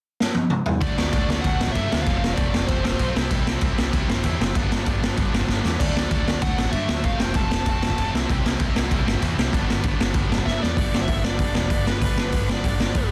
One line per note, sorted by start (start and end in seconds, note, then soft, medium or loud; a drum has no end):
0.20 snare medium
0.35 high tom medium
0.50 mid tom medium
0.66 floor tom loud
0.81 0.92 D2 loud
0.81 0.98 D3 loud
0.81 0.98 F#3 medium
0.81 0.98 A3 loud
0.81 0.97 D4 loud
0.81 1.58 F#4 medium
0.81 1.40 D5 medium
0.81 kick loud
0.81 crash medium
0.97 1.08 D2 medium
0.97 1.12 D3 medium
0.97 1.13 F#3 medium
0.97 1.15 A3 medium
0.97 1.14 D4 medium
0.97 snare loud
1.13 1.24 D2 medium
1.13 1.30 D3 medium
1.13 1.29 F#3 medium
1.13 1.29 A3 medium
1.13 1.29 D4 medium
1.13 kick loud
1.13 crash medium
1.29 1.39 D2 medium
1.29 1.44 D3 medium
1.29 1.45 F#3 medium
1.29 1.45 A3 medium
1.29 1.45 D4 medium
1.29 snare loud
1.41 1.55 D2 medium
1.41 1.62 D3 loud
1.41 1.71 F#5 loud
1.41 kick loud
1.41 crash medium
1.46 1.62 F#3 loud
1.46 1.61 A3 medium
1.46 1.61 D4 loud
1.59 1.72 A1 medium
1.59 1.77 F#3 medium
1.59 1.76 A3 medium
1.59 1.77 D4 loud
1.59 1.74 F#4 medium
1.59 snare loud
1.63 1.76 D3 medium
1.68 2.02 E5 loud
1.68 kick medium
1.75 1.86 G2 medium
1.75 1.93 D3 medium
1.75 1.93 F#3 medium
1.75 1.93 A3 medium
1.75 1.92 D4 medium
1.75 2.07 F#4 medium
1.75 kick medium
1.75 crash medium
1.92 2.03 D2 medium
1.92 2.07 D3 medium
1.92 2.07 F#3 medium
1.92 2.07 A3 medium
1.92 2.06 D4 medium
1.92 snare loud
2.02 2.16 F5 loud
2.06 2.18 F1 medium
2.06 2.23 F2 medium
2.06 2.23 C3 medium
2.06 2.23 F3 loud
2.06 2.23 A3 loud
2.06 2.82 F4 loud
2.06 kick loud
2.06 crash medium
2.11 2.23 C4 loud
2.17 2.34 F5 medium
2.23 2.33 F1 medium
2.23 2.38 F2 medium
2.23 2.39 C3 medium
2.23 2.39 F3 medium
2.23 2.39 A3 medium
2.23 2.40 C4 loud
2.23 snare loud
2.34 2.67 D5 medium
2.34 kick loud
2.34 crash medium
2.38 2.48 F1 medium
2.38 2.54 F2 medium
2.38 2.54 C3 medium
2.38 2.54 F3 medium
2.38 2.53 A3 medium
2.38 2.54 C4 medium
2.53 2.64 F1 medium
2.53 2.67 F2 medium
2.53 2.68 C3 medium
2.53 2.68 F3 medium
2.53 2.68 A3 medium
2.53 2.69 C4 medium
2.53 snare loud
2.67 2.80 F1 medium
2.67 2.84 F2 medium
2.67 2.84 C3 loud
2.67 2.83 F3 loud
2.67 2.83 A3 loud
2.67 2.83 C4 loud
2.67 3.11 C5 medium
2.67 kick loud
2.67 crash medium
2.83 2.95 F1 medium
2.83 3.00 F2 medium
2.83 3.00 C3 medium
2.83 3.00 F3 medium
2.83 3.01 A3 medium
2.83 3.01 C4 medium
2.83 2.98 F4 medium
2.83 snare loud
2.92 kick medium
2.99 3.11 B1 medium
2.99 3.15 F2 medium
2.99 3.15 C3 medium
2.99 3.15 F3 medium
2.99 3.15 A3 medium
2.99 3.16 C4 medium
2.99 3.15 F4 medium
2.99 kick medium
2.99 crash medium
3.16 3.27 C2 medium
3.16 3.32 C3 loud
3.16 3.33 G3 loud
3.16 3.32 C4 loud
3.16 3.31 E4 loud
3.16 snare loud
3.31 3.42 C2 medium
3.31 3.47 C3 medium
3.31 3.49 G3 medium
3.31 3.48 C4 loud
3.31 3.49 E4 loud
3.31 kick loud
3.31 crash medium
3.47 3.57 C2 medium
3.47 3.64 C3 medium
3.47 3.64 G3 medium
3.47 3.63 C4 loud
3.47 3.62 E4 loud
3.47 snare loud
3.61 3.73 C2 loud
3.61 3.79 G3 medium
3.61 3.79 C4 medium
3.61 3.80 E4 medium
3.61 kick loud
3.61 crash medium
3.66 3.78 C3 medium
3.78 3.89 C2 medium
3.78 3.95 C3 medium
3.78 3.95 G3 medium
3.78 3.94 C4 medium
3.78 3.93 E4 loud
3.78 snare loud
3.92 4.04 C2 medium
3.92 4.07 C3 medium
3.92 4.10 G3 medium
3.92 4.11 C4 loud
3.92 4.11 E4 loud
3.92 kick loud
3.92 crash medium
3.96 4.09 C3 medium
4.08 4.20 G1 medium
4.08 4.25 C3 medium
4.08 4.25 G3 medium
4.08 4.24 C4 medium
4.08 4.39 E4 medium
4.08 snare loud
4.12 4.24 E4 medium
4.16 kick medium
4.24 4.35 E2 medium
4.24 4.39 C3 medium
4.24 4.40 G3 medium
4.24 4.41 C4 medium
4.24 4.41 E4 medium
4.24 kick loud
4.24 crash medium
4.40 4.51 F#1 medium
4.40 4.55 C3 medium
4.40 4.55 G3 medium
4.40 4.56 C4 loud
4.40 4.56 E4 loud
4.40 snare loud
4.55 4.66 G1 medium
4.55 4.73 G2 loud
4.55 4.72 D3 loud
4.55 4.72 G3 loud
4.55 4.71 B3 loud
4.55 4.72 D4 loud
4.55 kick loud
4.55 crash medium
4.71 4.82 G1 medium
4.71 4.86 G2 medium
4.71 4.87 D3 medium
4.71 4.86 G3 medium
4.71 4.87 B3 loud
4.71 4.88 D4 loud
4.71 snare loud
4.86 4.97 G1 medium
4.86 5.02 G2 medium
4.86 5.02 D3 medium
4.86 5.02 G3 medium
4.86 5.01 B3 medium
4.86 5.01 D4 loud
4.86 kick loud
4.86 crash medium
5.02 5.13 G1 medium
5.02 5.17 G2 medium
5.02 5.17 D3 medium
5.02 5.18 G3 medium
5.02 5.18 B3 medium
5.02 5.19 D4 medium
5.02 snare loud
5.17 5.29 G1 medium
5.17 5.35 G2 medium
5.17 5.35 D3 medium
5.17 5.34 G3 loud
5.17 5.34 B3 loud
5.17 5.34 D4 loud
5.17 kick loud
5.17 crash medium
5.34 5.44 G1 medium
5.34 5.48 G2 medium
5.34 5.48 D3 medium
5.34 5.49 G3 medium
5.34 5.49 B3 medium
5.34 5.50 D4 medium
5.34 snare loud
5.41 kick medium
5.49 5.60 G1 medium
5.49 5.65 G2 medium
5.49 5.65 D3 medium
5.49 5.64 G3 medium
5.49 5.64 B3 medium
5.49 5.64 D4 medium
5.49 kick loud
5.49 snare medium
5.65 5.75 E2 medium
5.65 5.80 G2 medium
5.65 5.80 D3 medium
5.65 5.80 G3 medium
5.65 5.80 B3 medium
5.65 5.79 D4 medium
5.65 snare medium
5.80 5.91 D2 medium
5.80 5.96 D3 medium
5.80 5.95 F#3 medium
5.80 5.96 A3 loud
5.80 5.95 D4 loud
5.80 6.38 D5 medium
5.80 kick loud
5.80 crash loud
5.96 6.07 D2 medium
5.96 6.10 D3 medium
5.96 6.11 F#3 medium
5.96 6.12 A3 medium
5.96 6.12 D4 medium
5.96 snare loud
6.11 6.22 D2 medium
6.11 6.28 D3 medium
6.11 6.28 F#3 medium
6.11 6.27 A3 medium
6.11 6.26 D4 medium
6.11 kick loud
6.11 crash medium
6.27 6.37 D2 medium
6.27 6.42 D3 medium
6.27 6.42 F#3 medium
6.27 6.42 A3 medium
6.27 6.42 D4 medium
6.27 snare loud
6.42 6.53 D2 medium
6.42 6.58 D3 medium
6.42 6.57 F#3 loud
6.42 6.57 A3 loud
6.42 6.56 D4 loud
6.42 6.71 F#5 medium
6.42 kick loud
6.42 crash medium
6.58 6.69 A1 medium
6.58 6.72 D3 medium
6.58 6.72 F#3 medium
6.58 6.73 A3 medium
6.58 6.73 D4 medium
6.58 snare loud
6.65 kick medium
6.72 6.84 G2 medium
6.72 6.89 D3 medium
6.72 6.89 F#3 medium
6.72 6.89 A3 medium
6.72 6.88 D4 medium
6.72 7.05 E5 medium
6.72 kick loud
6.72 crash medium
6.89 7.06 D2 medium
6.89 7.04 D3 medium
6.89 7.04 F#3 medium
6.89 7.04 A3 medium
6.89 7.04 D4 medium
6.89 snare loud
7.04 7.15 F1 medium
7.04 7.20 F2 medium
7.04 7.20 C3 loud
7.04 7.19 F3 loud
7.04 7.19 A3 loud
7.04 7.19 C4 loud
7.04 7.20 F5 loud
7.04 kick loud
7.04 crash medium
7.20 7.31 F1 medium
7.20 7.34 F2 medium
7.20 7.35 C3 medium
7.20 7.35 F3 medium
7.20 7.35 A3 medium
7.20 7.36 C4 medium
7.20 7.36 G5 loud
7.20 snare loud
7.34 7.46 F1 medium
7.34 7.51 F2 medium
7.34 7.50 C3 medium
7.34 7.50 F3 medium
7.34 7.50 A3 medium
7.34 7.50 C4 loud
7.34 7.68 A5 loud
7.34 kick loud
7.34 crash medium
7.50 7.63 F1 medium
7.50 7.66 F2 medium
7.50 7.66 C3 medium
7.50 7.67 F3 medium
7.50 7.67 A3 medium
7.50 7.67 C4 medium
7.50 snare loud
7.66 7.78 F1 medium
7.66 7.83 F2 medium
7.66 7.82 C3 medium
7.66 7.82 F3 loud
7.66 7.82 A3 loud
7.66 7.82 C4 loud
7.66 kick loud
7.66 crash medium
7.70 8.12 A5 medium
7.83 7.93 F1 medium
7.83 7.96 F2 medium
7.83 7.96 C3 medium
7.83 7.97 F3 medium
7.83 7.97 A3 medium
7.83 7.97 C4 loud
7.83 snare loud
7.90 kick medium
7.97 8.09 F1 medium
7.97 8.12 F2 medium
7.97 8.12 C3 medium
7.97 8.13 F3 medium
7.97 8.13 A3 medium
7.97 8.13 C4 medium
7.97 kick loud
7.97 crash medium
8.14 8.24 C2 medium
8.14 8.30 C3 loud
8.14 8.31 G3 loud
8.14 8.30 C4 loud
8.14 8.29 E4 loud
8.14 snare loud
8.30 8.40 C2 loud
8.30 8.45 C3 medium
8.30 8.45 G3 medium
8.30 8.45 C4 loud
8.30 8.46 E4 loud
8.30 kick loud
8.30 crash medium
8.44 8.55 C2 medium
8.44 8.61 C3 medium
8.44 8.62 G3 medium
8.44 8.61 C4 medium
8.44 8.60 E4 loud
8.44 snare loud
8.60 8.71 C2 loud
8.60 8.75 C3 medium
8.60 8.77 G3 medium
8.60 8.76 C4 medium
8.60 8.77 E4 loud
8.60 kick loud
8.60 crash medium
8.75 8.86 C2 medium
8.75 8.92 C3 medium
8.75 8.93 G3 medium
8.75 8.92 C4 medium
8.75 8.91 E4 medium
8.75 snare loud
8.91 9.02 C2 medium
8.91 9.06 C3 medium
8.91 9.07 G3 medium
8.91 9.07 C4 medium
8.91 9.07 E4 loud
8.91 kick loud
8.91 crash medium
9.07 9.18 G1 medium
9.07 9.22 C3 medium
9.07 9.22 G3 medium
9.07 9.21 C4 loud
9.07 9.20 E4 loud
9.07 snare loud
9.14 kick medium
9.22 9.33 E2 medium
9.22 9.36 C3 medium
9.22 9.38 G3 medium
9.22 9.38 C4 medium
9.22 9.38 E4 medium
9.22 kick loud
9.22 crash medium
9.37 9.48 C2 medium
9.37 9.52 C3 loud
9.37 9.53 G3 medium
9.37 9.53 C4 loud
9.37 9.53 E4 loud
9.37 snare loud
9.53 9.64 G1 loud
9.53 9.69 G2 medium
9.53 9.68 D3 medium
9.53 9.68 G3 loud
9.53 9.68 B3 loud
9.53 9.67 D4 loud
9.53 kick loud
9.53 crash medium
9.68 9.80 G1 medium
9.68 9.84 G2 medium
9.68 9.84 D3 medium
9.68 9.85 G3 medium
9.68 9.85 B3 medium
9.68 9.85 D4 loud
9.68 snare loud
9.84 9.95 G1 medium
9.84 9.99 G2 medium
9.84 9.99 D3 medium
9.84 9.98 G3 medium
9.84 9.98 B3 medium
9.84 9.98 D4 medium
9.84 kick loud
9.84 crash medium
9.99 10.11 G1 medium
9.99 10.13 G2 medium
9.99 10.13 D3 medium
9.99 10.14 G3 medium
9.99 10.14 B3 medium
9.99 10.15 D4 medium
9.99 snare loud
10.14 10.25 G1 medium
10.14 10.32 G2 loud
10.14 10.31 D3 loud
10.14 10.30 G3 medium
10.14 10.30 B3 loud
10.14 10.29 D4 loud
10.14 kick loud
10.14 crash medium
10.30 10.42 G1 medium
10.30 10.45 G2 medium
10.30 10.45 D3 medium
10.30 10.45 G3 medium
10.30 10.46 B3 medium
10.30 10.46 D4 medium
10.30 snare loud
10.38 kick medium
10.46 10.57 G1 medium
10.46 10.61 G2 medium
10.46 10.61 D3 medium
10.46 10.60 G3 medium
10.46 10.60 B3 medium
10.46 10.60 D4 medium
10.46 10.62 E5 loud
10.46 kick loud
10.46 snare medium
10.61 10.78 E2 medium
10.61 10.75 G2 medium
10.61 10.76 D3 medium
10.61 10.77 G3 medium
10.61 10.76 B3 medium
10.61 10.76 D4 medium
10.61 10.76 D5 medium
10.61 snare medium
10.77 10.91 G1 medium
10.77 10.94 G2 medium
10.77 10.93 D3 medium
10.77 10.93 G3 medium
10.77 10.93 B3 loud
10.77 10.92 D4 loud
10.77 10.99 D5 loud
10.77 kick loud
10.77 open hi-hat medium
10.93 11.07 G1 medium
10.93 11.08 G2 medium
10.93 11.07 D3 medium
10.93 11.08 G3 medium
10.93 11.08 B3 medium
10.93 11.09 D4 medium
10.93 snare loud
11.02 11.23 E5 medium
11.08 11.23 G1 medium
11.08 11.24 G2 medium
11.08 11.24 D3 medium
11.08 11.23 G3 medium
11.08 11.24 B3 medium
11.08 11.23 D4 medium
11.08 kick loud
11.08 open hi-hat medium
11.24 11.38 G1 medium
11.24 11.39 G2 medium
11.24 11.39 D3 medium
11.24 11.39 G3 medium
11.24 11.41 B3 medium
11.24 11.40 D4 medium
11.24 11.89 D5 medium
11.24 snare loud
11.39 11.53 G1 medium
11.39 11.55 G2 medium
11.39 11.55 D3 loud
11.39 11.55 G3 medium
11.39 11.54 B3 medium
11.39 11.54 D4 loud
11.39 kick loud
11.39 open hi-hat medium
11.55 11.70 E1 medium
11.55 11.69 G2 medium
11.55 11.69 D3 medium
11.55 11.70 G3 medium
11.55 11.71 B3 medium
11.55 11.70 D4 medium
11.55 snare loud
11.70 11.85 G1 medium
11.70 11.86 G2 medium
11.70 11.86 D3 medium
11.70 11.86 G3 medium
11.70 11.86 B3 medium
11.70 11.85 D4 medium
11.70 kick loud
11.70 open hi-hat medium
11.86 12.01 G1 medium
11.86 12.01 G2 medium
11.86 12.02 D3 medium
11.86 12.03 G3 medium
11.86 12.03 B3 medium
11.86 12.03 D4 loud
11.86 12.02 B4 medium
11.86 snare loud
12.01 12.15 G1 medium
12.01 12.18 G2 medium
12.01 12.18 D3 loud
12.01 12.18 G3 loud
12.01 12.18 B3 loud
12.01 12.17 D4 loud
12.01 12.51 B4 medium
12.01 kick loud
12.01 open hi-hat medium
12.16 12.31 G1 medium
12.16 12.33 G2 medium
12.16 12.33 D3 medium
12.16 12.34 G3 medium
12.16 12.35 B3 medium
12.16 12.34 D4 loud
12.16 snare loud
12.32 12.47 G1 medium
12.32 12.51 G2 medium
12.32 12.50 D3 medium
12.32 12.50 G3 medium
12.32 12.50 B3 medium
12.32 12.49 D4 medium
12.32 kick loud
12.32 open hi-hat medium
12.49 12.63 G1 medium
12.49 12.64 G2 medium
12.49 12.65 D3 medium
12.49 12.65 G3 medium
12.49 12.67 B3 medium
12.49 12.66 D4 medium
12.49 13.09 D5 medium
12.49 snare loud
12.64 12.78 G1 medium
12.64 12.81 G2 medium
12.64 12.81 D3 medium
12.64 12.81 G3 medium
12.64 12.81 B3 loud
12.64 12.79 D4 loud
12.64 kick loud
12.64 open hi-hat medium
12.80 12.94 G1 medium
12.80 12.94 G2 medium
12.80 12.95 D3 medium
12.80 12.94 G3 medium
12.80 12.96 B3 medium
12.80 12.96 D4 medium
12.80 snare loud
12.95 13.09 G1 medium
12.95 13.10 G2 medium
12.95 13.10 D3 medium
12.95 13.10 G3 medium
12.95 13.11 B3 medium
12.95 13.11 D4 medium
12.95 kick loud
12.95 open hi-hat medium